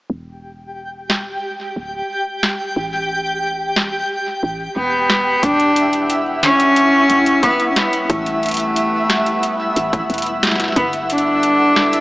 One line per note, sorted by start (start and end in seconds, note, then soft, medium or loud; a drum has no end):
0.10 1.36 E1 loud
0.10 5.44 G4 medium
0.10 5.44 G5 medium
1.10 snare loud
1.76 2.01 D1 medium
2.43 snare loud
2.76 4.03 A1 loud
3.76 snare loud
4.43 4.68 A1 medium
4.76 5.36 E1 loud
4.76 5.44 B3 medium
5.10 snare loud
5.43 6.70 E1 loud
5.43 12.01 G3 medium
5.43 6.10 D4 loud
5.43 8.07 E4 medium
5.43 12.01 E4 medium
5.43 10.72 E5 medium
5.43 12.01 E5 medium
5.43 12.01 F#5 medium
5.43 kick loud
5.43 closed hi-hat medium
5.60 closed hi-hat soft
5.76 closed hi-hat medium
5.93 closed hi-hat medium
6.10 closed hi-hat medium
6.43 7.45 C#4 loud
6.43 snare loud
6.43 closed hi-hat medium
6.60 closed hi-hat medium
6.76 closed hi-hat medium
7.10 7.35 D1 medium
7.10 closed hi-hat medium
7.26 closed hi-hat medium
7.43 7.69 B3 loud
7.43 kick loud
7.43 closed hi-hat medium
7.60 closed hi-hat soft
7.69 7.78 C#4 medium
7.76 8.03 B3 medium
7.76 snare loud
7.76 closed hi-hat medium
7.93 closed hi-hat medium
8.03 8.11 B3 medium
8.10 9.36 A1 loud
8.10 10.10 A3 medium
8.10 10.74 B3 medium
8.10 kick loud
8.10 closed hi-hat medium
8.26 closed hi-hat soft
8.43 closed hi-hat soft
8.46 closed hi-hat soft
8.49 closed hi-hat medium
8.51 closed hi-hat medium
8.54 closed hi-hat medium
8.57 closed hi-hat medium
8.60 closed hi-hat medium
8.76 closed hi-hat medium
9.10 snare loud
9.10 closed hi-hat medium
9.26 closed hi-hat soft
9.43 closed hi-hat medium
9.76 10.01 A1 loud
9.76 closed hi-hat medium
9.93 kick loud
9.93 closed hi-hat medium
10.10 10.70 E1 loud
10.10 closed hi-hat soft
10.14 closed hi-hat soft
10.18 closed hi-hat medium
10.22 closed hi-hat medium
10.26 closed hi-hat soft
10.43 snare loud
10.43 closed hi-hat medium
10.47 snare loud
10.51 snare medium
10.56 snare medium
10.60 snare medium
10.60 closed hi-hat medium
10.64 snare soft
10.68 snare soft
10.72 snare soft
10.76 12.01 G1 loud
10.76 10.91 B3 loud
10.76 12.01 B3 medium
10.76 12.01 A4 medium
10.76 kick loud
10.76 closed hi-hat medium
10.93 closed hi-hat soft
11.10 12.01 D4 loud
11.10 closed hi-hat medium
11.18 closed hi-hat medium
11.43 closed hi-hat medium
11.76 snare loud
11.93 closed hi-hat medium